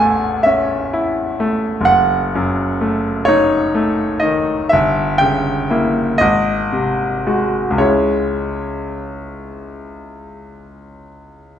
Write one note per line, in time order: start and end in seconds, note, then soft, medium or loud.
0.00 1.84 A1 medium
0.00 0.28 E2 soft
0.00 0.75 A3 soft
0.00 0.43 E5 medium
0.00 1.85 F#5 medium
0.00 0.45 G#5 medium
0.43 1.22 C#4 soft
0.43 1.86 E5 medium
0.93 1.68 E4 soft
1.40 1.87 A3 medium
1.81 4.64 F#1 medium
1.85 3.27 F#5 medium
2.35 3.10 F#2 soft
2.81 3.56 A3 soft
3.25 4.03 D#4 medium
3.25 4.21 C#5 medium
3.75 4.52 A3 medium
4.20 4.71 D#3 soft
4.20 4.70 D#5 medium
4.69 6.17 G1 medium
4.69 5.20 E5 medium
5.18 6.01 C#3 medium
5.18 6.20 G5 medium
5.70 6.17 A#3 soft
5.70 6.17 E4 soft
6.18 7.76 G#1 medium
6.18 7.79 D#5 medium
6.72 7.59 C3 soft
7.27 7.77 G#3 soft
7.27 7.77 F#4 soft
7.70 11.59 C#2 soft
7.78 11.59 C#3 soft
7.78 11.59 G#3 soft
7.78 11.59 E4 soft
7.78 11.59 C#5 medium